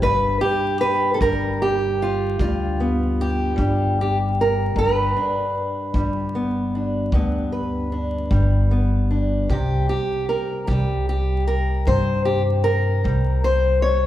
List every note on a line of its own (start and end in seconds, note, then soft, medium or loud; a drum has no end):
0.00 0.38 G1 medium
0.00 2.39 G2 medium
0.00 1.17 G3 medium
0.00 0.41 B4 loud
0.00 kick medium
0.41 0.80 G4 medium
0.81 1.13 B4 medium
1.14 1.21 A4 medium
1.21 2.35 G1 medium
1.21 3.55 G3 medium
1.21 1.60 A#4 loud
1.21 kick medium
1.62 2.79 G4 medium
2.02 2.39 F4 medium
2.39 3.54 D2 medium
2.39 4.75 G2 medium
2.39 3.98 F4 medium
2.39 kick medium
2.80 4.72 B3 soft
3.21 3.99 G4 medium
3.56 4.72 G1 loud
3.56 5.95 G3 medium
3.56 kick medium
4.01 4.17 G4 medium
4.41 4.78 A#4 medium
4.76 5.12 G1 medium
4.76 7.12 G2 medium
4.76 7.14 B4 medium
4.76 kick medium
5.17 6.74 D4 soft
5.94 7.09 G1 medium
5.94 8.30 G3 medium
5.94 kick medium
6.35 7.13 B3 soft
6.75 7.91 D4 soft
7.12 8.27 D2 medium
7.12 9.50 G2 medium
7.12 8.70 B3 soft
7.12 kick medium
7.52 9.45 B4 soft
7.92 9.09 D4 soft
8.31 9.46 G1 medium
8.31 10.71 G3 medium
8.31 kick medium
8.71 9.45 B3 soft
9.11 9.50 D4 soft
9.49 9.86 C2 medium
9.49 11.88 C3 medium
9.49 9.88 G4 medium
9.49 kick medium
9.89 10.29 G4 medium
10.29 10.67 A#4 medium
10.67 11.83 C2 medium
10.67 13.04 G3 medium
10.67 11.08 G4 medium
10.67 kick medium
11.09 11.47 G4 medium
11.47 11.87 A#4 medium
11.87 13.02 G2 medium
11.87 14.07 C3 medium
11.87 12.25 C5 medium
11.87 kick medium
12.25 12.41 G4 medium
12.64 13.44 A#4 medium
13.04 14.07 C2 medium
13.04 14.07 G3 medium
13.04 kick medium
13.44 13.82 C5 medium
13.82 14.07 C#5 medium